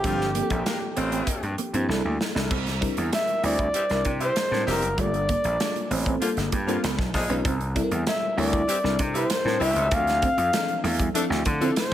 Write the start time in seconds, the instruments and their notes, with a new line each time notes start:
Already playing: flugelhorn G4
0.04 slap bass G1, horn section D3 F3 C4 F4, fm electric piano F3 A#3 C4 D4 A4, clean electric guitar G3, kick, closed hi-hat
0.21 snare
0.35 fm electric piano F3 A#3 C4 D4 G4, clean electric guitar A#3, closed hi-hat
0.43 fm electric piano A4
0.50 slap bass A#1, horn section D3 G3 C4 G4, kick, closed hi-hat
0.66 horn section F3 A#3 D4 A#4, muted clean electric guitar stroke, snare, closed hi-hat
0.96 slap bass A1, horn section A3 C4 F4 C5, clean electric guitar C4, closed hi-hat
1.12 clean electric guitar C4, closed hi-hat
1.27 muted clean electric guitar stroke, kick, closed hi-hat
1.43 slap bass G2, closed hi-hat
1.58 clean electric guitar A#3, closed hi-hat
1.73 slap bass G2, fm electric piano F3 A#3 C4 D4 E4, clean electric guitar C4, closed hi-hat
1.89 slap bass C2, fm electric piano G3 A#3 D4 E4 A4, clean electric guitar A#3, snare
2.05 slap bass D2, muted clean electric guitar stroke
2.21 snare
2.35 slap bass C2, clean electric guitar D4, snare
2.51 slap bass C2, clean electric guitar C4, kick, crash
2.66 muted clean electric guitar stroke, snare, closed hi-hat
2.81 fm electric piano G3 C4 D4 E4 A#4, clean electric guitar D4, kick, closed hi-hat
2.97 slap bass E2, closed hi-hat
3.12 flugelhorn E5, muted clean electric guitar stroke, snare, closed hi-hat
3.27 closed hi-hat
3.43 slap bass D2, fm electric piano G3 C4 D4 E4 C5, clean electric guitar E4, flugelhorn D5, open hi-hat
3.59 clean electric guitar E4, kick, closed hi-hat
3.74 horn section E3 G3 C4 G4, muted clean electric guitar stroke, closed hi-hat
3.90 slap bass C2, fm electric piano G3 C4 D4 E4 A#4, snare, closed hi-hat
4.05 slap bass C3, clean electric guitar D4, kick, closed hi-hat
4.20 horn section E3 G3 C4 G4, clean electric guitar E4, flugelhorn C5, closed hi-hat
4.36 snare, closed hi-hat
4.51 slap bass A2, fm electric piano G3 C4 D4 E4 A#4, snare
4.67 slap bass F1, horn section E3 G3 C4 G4, clean electric guitar C4, flugelhorn A#4, snare, open hi-hat
4.82 slap bass F#1, closed hi-hat
4.98 slap bass G1, clean electric guitar G3, fm electric piano G3 A3 D4 F4 A4, flugelhorn D5, kick, closed hi-hat
5.05 fm electric piano A#3
5.13 muted clean electric guitar stroke, closed hi-hat
5.29 clean electric guitar A#3, kick, closed hi-hat
5.44 slap bass A#1, closed hi-hat
5.60 fm electric piano G3 A#3 D4 F4 A4, muted clean electric guitar stroke, snare, closed hi-hat
5.76 closed hi-hat
5.90 slap bass A1, clean electric guitar C4, open hi-hat
6.06 clean electric guitar C4, kick, closed hi-hat
6.21 horn section D3 F3 A#3 F4, fm electric piano G3 A#3 D4 F4 A4, muted clean electric guitar stroke, closed hi-hat
6.37 slap bass G1, snare, closed hi-hat
6.52 slap bass G2, clean electric guitar A#3, kick, closed hi-hat
6.67 horn section D3 F3 A#3 F4, fm electric piano G3 A#3 D4 F4 A4, clean electric guitar C4, closed hi-hat
6.83 slap bass C#2, clean electric guitar B3, snare, closed hi-hat
6.98 slap bass B1, muted clean electric guitar stroke, kick, snare
7.14 slap bass A#1, horn section F3 G#3 D#4 G#4, kick, snare, open hi-hat
7.29 slap bass B1, fm electric piano G#3 C#4 D#4 F4 B4, clean electric guitar C#4, closed hi-hat
7.45 slap bass C2, clean electric guitar C4, kick, closed hi-hat
7.61 muted clean electric guitar stroke, closed hi-hat
7.75 fm electric piano G3 C4 D4 E4 A4, clean electric guitar D4, kick, closed hi-hat
7.83 fm electric piano A#4
7.91 slap bass E2, closed hi-hat
8.07 flugelhorn E5, muted clean electric guitar stroke, snare, closed hi-hat
8.37 slap bass D2, fm electric piano G3 C4 D4 E4 A#4, clean electric guitar E4, flugelhorn D5, open hi-hat
8.53 clean electric guitar E4, kick, closed hi-hat
8.68 horn section E3 G3 C4 G4, muted clean electric guitar stroke, closed hi-hat
8.83 slap bass C2, fm electric piano G3 C4 D4 E4 A#4, snare
8.99 slap bass C3, clean electric guitar D4, kick, closed hi-hat
9.14 horn section E3 G3 C4 G4, clean electric guitar E4, flugelhorn C5, closed hi-hat
9.30 snare, closed hi-hat
9.45 slap bass A2, fm electric piano G3 C4 D4 E4 A#4, snare
9.60 slap bass C2, horn section E3 G3 C4 G4, clean electric guitar E4, flugelhorn E5, open hi-hat
9.75 slap bass C#2, closed hi-hat
9.91 slap bass D2, fm electric piano E3 C4 D4 A4, clean electric guitar D4, flugelhorn F5, kick, closed hi-hat
9.98 fm electric piano F3
10.07 muted clean electric guitar stroke, snare, closed hi-hat
10.22 clean electric guitar C4, kick, closed hi-hat
10.38 slap bass F2, closed hi-hat
10.52 fm electric piano E3 F3 C4 D4 A4, muted clean electric guitar stroke, snare, closed hi-hat
10.68 closed hi-hat
10.84 slap bass E2, clean electric guitar A3, open hi-hat
10.99 clean electric guitar G3, kick, closed hi-hat
11.14 fm electric piano F3 C4 D4 E4 A4, horn section F3 A3 D4 A4, muted clean electric guitar stroke, closed hi-hat
11.30 slap bass D2, snare
11.45 slap bass D3, clean electric guitar A3, kick, closed hi-hat
11.60 fm electric piano F3 C4 D4 E4 A4, horn section F3 A3 D4 A4, clean electric guitar C4, closed hi-hat
11.76 clean electric guitar A3, flugelhorn C5, snare, closed hi-hat